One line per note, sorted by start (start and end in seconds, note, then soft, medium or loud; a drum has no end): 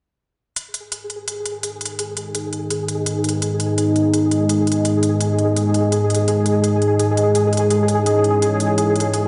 0.56 9.28 G#3 medium
0.56 6.24 D#4 medium
0.56 9.28 G#4 medium
0.56 6.24 B4 medium
0.56 9.10 D#5 medium
0.56 closed hi-hat medium
0.74 closed hi-hat medium
0.92 closed hi-hat medium
1.10 closed hi-hat soft
1.28 closed hi-hat medium
1.46 closed hi-hat medium
1.63 closed hi-hat medium
1.81 closed hi-hat soft
1.86 closed hi-hat medium
1.99 closed hi-hat medium
2.17 closed hi-hat medium
2.35 closed hi-hat medium
2.53 closed hi-hat soft
2.71 closed hi-hat medium
2.88 closed hi-hat medium
3.06 closed hi-hat medium
3.24 closed hi-hat soft
3.29 closed hi-hat medium
3.42 closed hi-hat medium
3.60 closed hi-hat medium
3.78 closed hi-hat medium
3.96 closed hi-hat soft
4.14 closed hi-hat medium
4.31 closed hi-hat medium
4.49 closed hi-hat medium
4.67 closed hi-hat soft
4.72 closed hi-hat medium
4.85 closed hi-hat medium
5.03 closed hi-hat medium
5.21 closed hi-hat medium
5.39 closed hi-hat soft
5.57 closed hi-hat medium
5.74 closed hi-hat medium
5.92 closed hi-hat medium
6.10 closed hi-hat soft
6.15 closed hi-hat medium
6.28 9.28 E4 medium
6.28 9.28 C#5 medium
6.28 closed hi-hat medium
6.46 closed hi-hat medium
6.64 closed hi-hat medium
6.82 closed hi-hat soft
6.99 closed hi-hat medium
7.17 closed hi-hat medium
7.35 closed hi-hat medium
7.53 closed hi-hat soft
7.57 closed hi-hat medium
7.70 closed hi-hat medium
7.88 closed hi-hat medium
8.06 closed hi-hat medium
8.24 closed hi-hat soft
8.42 closed hi-hat medium
8.60 closed hi-hat medium
8.78 closed hi-hat medium
8.96 closed hi-hat soft
9.00 closed hi-hat medium
9.14 9.28 E5 medium
9.14 closed hi-hat medium